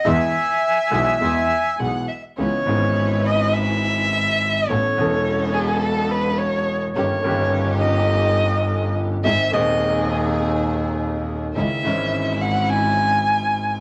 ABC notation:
X:1
M:4/4
L:1/16
Q:1/4=104
K:E
V:1 name="Bandoneon"
e12 z4 | [K:C#m] z16 | z16 | z16 |
z16 | z16 |]
V:2 name="Violin"
g8 g4 f2 e2 | [K:C#m] c6 d2 e8 | c6 G2 A2 B2 c3 z | c6 d8 z2 |
e2 d4 z8 z2 | e6 f2 g8 |]
V:3 name="String section"
[B,EG]2 z4 [B,EG]2 [B,EG]2 z2 [B,EG]2 z2 | [K:C#m] [CEB]2 [CEB]12- [CEB]2 | [B,CA]2 [B,CA]12- [B,CA]2 | [CD=G]2 [CDG]12- [CDG]2 |
[^B,DG]2 [B,DG]12- [B,DG]2 | [CDE]2 [CE]12- [CE]2 |]
V:4 name="Grand piano" clef=bass
[E,,E,G,B,G]2 z4 [B,,,B,,E,G,B,G]2 [E,,E,G,B,G]2 z2 [B,,,B,,E,G,B,G]2 z2 | [K:C#m] [C,,C,E,B,CG]2 [G,,,G,,E,B,CG]12- [G,,,G,,E,B,CG]2 | [A,,,A,,E,B,CA]2 [E,,,E,,E,B,CA]12- [E,,,E,,E,B,CA]2 | [=G,,,=G,,D,^A,C=G]2 [G,,,G,,D,A,CG]12- [G,,,G,,D,A,CG]2 |
[G,,,G,,D,G,^B,G]2 [D,,,D,,D,G,B,G]12- [D,,,D,,D,G,B,G]2 | [C,,C,D,G,CE]2 [G,,,G,,E,G,CE]12- [G,,,G,,E,G,CE]2 |]
V:5 name="Double bass" clef=bass
E,,2 z4 B,,,2 E,,2 z2 B,,,2 z2 | [K:C#m] C,,2 G,,,12- G,,,2 | A,,,2 E,,,12- E,,,2 | =G,,,2 G,,,12- G,,,2 |
G,,,2 D,,12- D,,2 | C,,2 G,,,12- G,,,2 |]